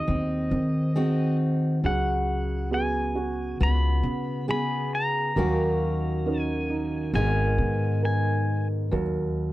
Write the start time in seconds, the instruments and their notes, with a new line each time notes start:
Already playing: steel-string acoustic guitar D#2 F#4, felt piano F#3 C4 D#4 G#4, pedal steel guitar D#5
0.08 upright bass D#2, steel-string acoustic guitar C4
0.51 upright bass D#3, felt piano C4
0.96 steel-string acoustic guitar C4 D#4 F#4, felt piano G#4
1.84 upright bass C#2, steel-string acoustic guitar C#3, felt piano F#3 G#4, pedal steel guitar F#5
2.71 felt piano B3 F#4 G#4, pedal steel guitar G#5
3.15 felt piano F#4
3.60 upright bass C#2, steel-string acoustic guitar B3, pedal steel guitar B5
4.03 upright bass C#3, felt piano B3
4.48 steel-string acoustic guitar B3 G#4, felt piano G#4, pedal steel guitar B5
4.95 pedal steel guitar A#5
5.36 steel-string acoustic guitar D#2 D#3 A#3 C#4 F#4, upright bass D#2, felt piano F#3 A#4
6.26 felt piano C#4 D#4 A#4
6.41 pedal steel guitar G#5
6.70 felt piano D#4
7.14 upright bass G#1, steel-string acoustic guitar G#2 D#3 B3 D#4 A#4, felt piano G#3, pedal steel guitar G#5
7.58 upright bass G#2, felt piano B3
8.03 felt piano A#4, pedal steel guitar G#5
8.91 steel-string acoustic guitar D#2, upright bass D#2, felt piano F#3 A#4